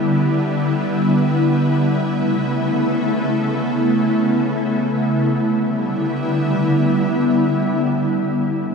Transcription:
ambient pad
Already playing: D3 G3 B3 E4
1.80 C#3 A3
5.30 D3 G3 B3 E4

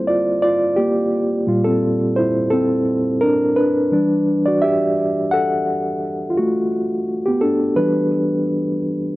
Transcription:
reed electric piano
Already playing: G3 A#3 C4 E4 F4 A4 C5
0.07 F4 D5
0.42 F4 D5
0.76 A#3 G4
1.47 A#2 G3 F4
1.64 C4 A4
2.16 E4 C5
2.50 C4 A4
3.21 D4 A#4
3.56 D4 B4
3.92 E3 G3 D4
4.46 F#4 D5
4.62 G4 E5
5.31 A4 F#5
6.30 F4
6.37 A3 F#4
7.26 B3 G4
7.41 D4 A4
7.76 E3 G3 D4 B4

